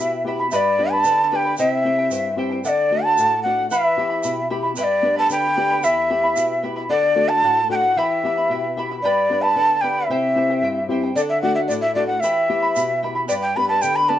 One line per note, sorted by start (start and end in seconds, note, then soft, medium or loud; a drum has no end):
0.00 0.50 B2 medium
0.00 0.14 B3 medium
0.00 0.14 E4 soft
0.00 0.25 E4 medium
0.00 0.14 G4 medium
0.00 0.22 E5 medium
0.00 0.26 E5 medium
0.00 0.25 G5 medium
0.00 0.26 B5 medium
0.24 0.46 B3 soft
0.24 0.46 E4 soft
0.24 0.39 E4 medium
0.24 0.46 G4 medium
0.24 0.40 E5 medium
0.24 0.39 G5 medium
0.24 0.38 B5 medium
0.39 0.53 E4 soft
0.39 0.52 E5 soft
0.39 0.52 B5 soft
0.51 1.03 G2 medium
0.51 0.78 G4 medium
0.51 0.78 B4 medium
0.51 0.78 D5 medium
0.51 0.57 E5 medium
0.51 0.77 G5 medium
0.51 0.79 B5 medium
0.51 shaker medium
0.56 0.93 D5 medium
0.79 1.21 B3 medium
0.79 1.21 D4 medium
0.79 1.21 G4 medium
0.79 0.92 B4 medium
0.79 0.92 D5 medium
0.79 0.92 G5 medium
0.79 0.92 B5 medium
0.91 1.04 B4 soft
0.91 1.05 D5 soft
0.91 1.24 A5 loud
0.91 1.05 B5 medium
1.04 1.56 D3 medium
1.04 1.31 B4 medium
1.04 1.32 D5 medium
1.04 1.31 G5 medium
1.04 1.32 B5 medium
1.04 shaker medium
1.24 1.32 A5 medium
1.31 1.53 B3 soft
1.31 1.53 D4 soft
1.31 1.53 G4 medium
1.31 1.45 B4 medium
1.31 1.45 D5 medium
1.31 1.45 G5 medium
1.31 1.37 A5 medium
1.31 1.44 B5 medium
1.36 1.58 G5 loud
1.45 1.59 B4 soft
1.45 1.59 D5 soft
1.45 1.58 B5 soft
1.57 2.10 C3 medium
1.57 1.84 E4 medium
1.57 1.85 G4 medium
1.57 1.85 C5 medium
1.57 2.34 E5 medium
1.57 1.84 E5 medium
1.57 1.85 G5 medium
1.57 shaker medium
1.84 2.27 C4 medium
1.84 2.27 E4 soft
1.84 1.98 E4 medium
1.84 2.27 G4 medium
1.84 1.98 C5 medium
1.84 1.98 E5 soft
1.84 1.97 G5 medium
1.98 2.11 E4 soft
1.98 2.11 C5 soft
1.98 2.11 G5 medium
2.11 2.62 G2 medium
2.11 2.37 E4 medium
2.11 2.37 C5 medium
2.11 2.37 E5 medium
2.11 2.38 G5 medium
2.11 shaker loud
2.36 2.58 C4 soft
2.36 2.58 E4 soft
2.36 2.51 E4 medium
2.36 2.59 G4 medium
2.36 2.51 C5 medium
2.36 2.51 E5 medium
2.36 2.50 G5 medium
2.51 2.65 E4 soft
2.51 2.64 C5 soft
2.51 2.64 G5 soft
2.64 3.16 D3 medium
2.64 2.91 A4 medium
2.64 2.91 D5 medium
2.64 2.70 E5 medium
2.64 2.91 F#5 medium
2.64 shaker medium
2.69 3.05 D5 loud
2.91 3.33 A3 soft
2.91 3.33 D4 soft
2.91 3.34 F#4 medium
2.91 3.05 A4 medium
2.91 3.05 D5 medium
2.91 3.05 F#5 medium
3.04 3.18 D5 soft
3.04 3.18 F#5 medium
3.04 3.42 A5 loud
3.18 3.69 A2 medium
3.18 3.44 A4 medium
3.18 3.45 D5 medium
3.18 3.46 F#5 medium
3.18 shaker loud
3.43 3.66 A3 soft
3.43 3.66 D4 soft
3.43 3.66 F#4 soft
3.43 3.58 A4 medium
3.43 3.58 D5 medium
3.43 3.68 F#5 medium
3.47 3.57 F#5 medium
3.58 3.71 D5 soft
3.58 3.71 F#5 medium
3.70 4.23 E3 medium
3.70 3.97 E4 medium
3.70 3.98 B4 medium
3.70 4.46 E5 medium
3.70 3.98 E5 medium
3.70 3.97 G5 medium
3.70 3.98 B5 medium
3.70 shaker medium
3.97 4.40 B3 soft
3.97 4.40 E4 soft
3.97 4.10 E4 medium
3.97 4.40 G4 medium
3.97 4.10 E5 medium
3.97 4.11 G5 soft
3.97 4.09 B5 medium
4.10 4.23 E4 soft
4.10 4.23 E5 soft
4.10 4.23 B5 medium
4.23 4.76 B2 medium
4.23 4.49 E4 medium
4.23 4.50 E5 medium
4.23 4.49 G5 medium
4.23 4.50 B5 medium
4.23 shaker loud
4.50 4.72 B3 soft
4.50 4.63 E4 medium
4.50 4.72 E4 soft
4.50 4.72 G4 medium
4.50 4.63 E5 medium
4.50 4.64 G5 medium
4.50 4.61 B5 medium
4.63 4.77 E4 soft
4.63 4.77 E5 soft
4.63 4.77 B5 medium
4.76 5.29 G2 medium
4.76 5.04 G4 medium
4.76 5.03 B4 medium
4.76 5.04 D5 medium
4.76 4.85 E5 medium
4.76 5.02 G5 medium
4.76 5.04 B5 medium
4.76 shaker medium
4.84 5.16 D5 medium
5.02 5.45 B3 medium
5.02 5.46 D4 soft
5.02 5.46 G4 medium
5.02 5.17 B4 medium
5.02 5.16 D5 medium
5.02 5.17 G5 medium
5.02 5.15 B5 medium
5.16 5.29 B4 soft
5.16 5.30 D5 soft
5.16 5.30 A5 medium
5.16 5.30 B5 medium
5.30 5.82 D3 medium
5.30 5.55 B4 medium
5.30 5.56 D5 medium
5.30 5.55 G5 medium
5.30 5.86 G5 loud
5.30 5.56 B5 medium
5.30 shaker medium
5.56 5.78 B3 medium
5.56 5.79 D4 soft
5.56 5.79 G4 medium
5.56 5.70 B4 medium
5.56 5.69 D5 medium
5.56 5.70 G5 medium
5.56 5.69 B5 medium
5.70 5.84 B4 soft
5.70 5.83 D5 soft
5.70 5.83 B5 soft
5.83 6.35 E2 medium
5.83 6.09 E4 medium
5.83 6.10 G4 medium
5.83 6.09 E5 medium
5.83 6.64 E5 medium
5.83 6.09 G5 medium
5.83 6.10 B5 medium
5.83 shaker medium
6.10 6.53 B3 soft
6.10 6.53 E4 soft
6.10 6.23 E4 medium
6.10 6.53 G4 medium
6.10 6.23 E5 soft
6.10 6.23 G5 medium
6.10 6.22 B5 medium
6.24 6.36 E4 soft
6.24 6.36 E5 medium
6.24 6.37 B5 medium
6.36 6.88 B2 medium
6.36 6.62 E4 medium
6.36 6.62 E5 medium
6.36 6.62 G5 medium
6.36 6.63 B5 medium
6.36 shaker loud
6.63 6.85 B3 soft
6.63 6.76 E4 medium
6.63 6.85 E4 soft
6.63 6.85 G4 soft
6.63 6.75 E5 medium
6.63 6.77 G5 medium
6.63 6.75 B5 medium
6.76 6.90 E4 soft
6.76 6.90 E5 medium
6.76 6.90 B5 medium
6.89 7.41 D3 medium
6.89 7.14 A4 medium
6.89 7.30 D5 loud
6.89 7.15 D5 medium
6.89 7.16 F#5 loud
7.15 7.59 A3 medium
7.15 7.59 D4 soft
7.15 7.59 F#4 medium
7.15 7.29 A4 medium
7.15 7.30 D5 medium
7.15 7.28 F#5 medium
7.29 7.42 D5 soft
7.29 7.43 F#5 medium
7.29 7.69 A5 loud
7.42 7.95 A2 medium
7.42 7.68 A4 medium
7.42 7.69 D5 medium
7.42 7.70 F#5 medium
7.69 7.91 A3 soft
7.69 7.91 D4 soft
7.69 7.91 F#4 medium
7.69 7.83 A4 medium
7.69 7.83 D5 medium
7.69 7.82 F#5 medium
7.69 7.76 G5 medium
7.75 7.99 F#5 loud
7.84 7.97 D5 soft
7.84 7.97 F#5 soft
7.96 8.48 E3 medium
7.96 8.24 E4 loud
7.96 8.24 G4 medium
7.96 8.77 E5 medium
7.96 8.24 E5 medium
7.96 8.23 G5 medium
7.96 8.24 B5 loud
8.23 8.66 B3 medium
8.23 8.66 E4 medium
8.23 8.38 E4 medium
8.23 8.66 G4 medium
8.23 8.37 E5 medium
8.23 8.37 G5 soft
8.23 8.36 B5 medium
8.37 8.50 E4 soft
8.37 8.50 E5 soft
8.37 8.50 B5 medium
8.50 9.01 B2 medium
8.50 8.77 E4 medium
8.50 8.77 E5 medium
8.50 8.76 G5 medium
8.50 8.77 B5 medium
8.77 8.98 B3 soft
8.77 8.98 E4 soft
8.77 8.90 E4 medium
8.77 8.98 G4 medium
8.77 8.91 E5 medium
8.77 8.90 G5 medium
8.77 8.90 B5 medium
8.91 9.04 E4 soft
8.91 9.04 E5 soft
8.91 9.04 B5 medium
9.03 9.55 G2 medium
9.03 9.30 G4 medium
9.03 9.31 B4 medium
9.03 9.43 D5 medium
9.03 9.31 D5 medium
9.03 9.30 G5 medium
9.03 9.31 B5 loud
9.29 9.72 B3 medium
9.29 9.72 D4 medium
9.29 9.72 G4 medium
9.29 9.43 B4 medium
9.29 9.42 D5 medium
9.29 9.44 G5 soft
9.29 9.42 B5 medium
9.42 9.55 B4 soft
9.42 9.56 D5 soft
9.42 9.83 A5 loud
9.42 9.56 B5 medium
9.56 10.08 D3 medium
9.56 9.81 B4 medium
9.56 9.82 D5 medium
9.56 9.81 G5 medium
9.56 9.83 B5 medium
9.81 10.04 B3 medium
9.81 10.04 D4 soft
9.81 10.04 G4 medium
9.81 9.96 B4 medium
9.81 9.97 D5 medium
9.81 10.07 G5 medium
9.81 9.96 G5 medium
9.81 9.96 B5 medium
9.97 10.10 B4 soft
9.97 10.10 D5 soft
9.97 10.10 B5 medium
10.06 10.61 C3 medium
10.06 10.88 E5 medium
10.10 10.35 E4 medium
10.10 10.37 G4 medium
10.10 10.36 C5 medium
10.10 10.35 E5 medium
10.10 10.37 G5 medium
10.35 10.78 C4 medium
10.35 10.79 E4 soft
10.35 10.50 E4 medium
10.35 10.79 G4 medium
10.35 10.49 C5 soft
10.35 10.50 E5 medium
10.35 10.49 G5 medium
10.50 10.62 E4 medium
10.50 10.63 C5 soft
10.50 10.63 G5 medium
10.62 11.14 G2 medium
10.62 10.89 E4 medium
10.62 10.90 C5 medium
10.62 10.89 E5 medium
10.62 10.90 G5 medium
10.88 11.10 C4 soft
10.88 11.10 E4 soft
10.88 11.03 E4 medium
10.88 11.10 G4 medium
10.88 11.03 C5 medium
10.88 11.03 E5 medium
10.88 11.02 G5 medium
11.03 11.17 E4 soft
11.03 11.16 C5 soft
11.03 11.16 G5 soft
11.15 11.67 D3 medium
11.15 11.43 A4 medium
11.15 11.22 D5 medium
11.15 11.43 D5 medium
11.15 11.43 F#5 medium
11.15 shaker medium
11.29 11.41 E5 medium
11.42 11.85 A3 medium
11.42 11.85 D4 soft
11.42 11.85 F#4 medium
11.42 11.57 A4 medium
11.42 11.57 D5 medium
11.42 11.55 F#5 medium
11.42 11.57 F#5 medium
11.55 11.71 D5 soft
11.55 11.61 E5 medium
11.55 11.70 F#5 medium
11.68 12.21 A2 medium
11.68 11.96 A4 medium
11.68 11.74 D5 medium
11.68 shaker medium
11.72 11.96 D5 medium
11.72 11.97 F#5 medium
11.81 11.94 E5 medium
11.95 12.17 A3 soft
11.95 12.17 D4 soft
11.95 12.17 F#4 medium
11.95 12.10 A4 medium
11.95 12.06 D5 medium
11.95 12.09 D5 medium
11.95 12.08 F#5 medium
12.07 12.22 D5 soft
12.07 12.22 F#5 medium
12.20 12.74 E3 medium
12.20 12.49 E4 medium
12.20 12.49 G4 medium
12.20 13.01 E5 medium
12.20 12.50 E5 medium
12.20 12.48 G5 medium
12.20 12.50 B5 medium
12.20 shaker medium
12.49 12.92 B3 medium
12.49 12.92 E4 soft
12.49 12.63 E4 medium
12.49 12.92 G4 medium
12.49 12.62 E5 medium
12.49 12.63 G5 medium
12.49 12.61 B5 medium
12.62 12.75 E4 soft
12.62 12.75 E5 soft
12.62 12.76 B5 medium
12.75 13.28 B2 medium
12.75 13.02 E4 medium
12.75 13.02 E5 medium
12.75 13.02 G5 medium
12.75 13.03 B5 medium
12.75 shaker medium
13.03 13.24 B3 soft
13.03 13.15 E4 medium
13.03 13.24 E4 soft
13.03 13.25 G4 medium
13.03 13.14 E5 medium
13.03 13.16 G5 medium
13.03 13.14 B5 medium
13.15 13.28 E4 soft
13.15 13.29 E5 soft
13.15 13.28 B5 medium
13.28 13.81 G2 medium
13.28 13.55 G4 medium
13.28 13.54 B4 medium
13.28 13.35 D5 medium
13.28 13.55 D5 medium
13.28 13.54 G5 medium
13.28 13.55 B5 medium
13.28 shaker medium
13.42 13.58 G5 medium
13.55 13.99 B3 medium
13.55 13.99 D4 soft
13.55 13.99 G4 medium
13.55 13.69 B4 medium
13.55 13.68 D5 medium
13.55 13.69 G5 medium
13.55 13.68 B5 medium
13.55 13.68 B5 loud
13.69 13.81 B4 soft
13.69 13.81 D5 soft
13.69 13.83 A5 loud
13.69 13.81 B5 medium
13.81 14.19 D3 medium
13.81 14.07 B4 medium
13.81 14.08 D5 medium
13.81 14.06 G5 medium
13.81 13.97 G5 loud
13.81 14.08 B5 medium
13.81 shaker medium
13.96 14.10 B5 loud
14.08 14.19 B3 soft
14.08 14.19 D4 soft
14.08 14.19 G4 medium
14.08 14.19 B4 medium
14.08 14.19 D5 medium
14.08 14.19 G5 medium
14.08 14.19 A5 medium
14.08 14.19 B5 medium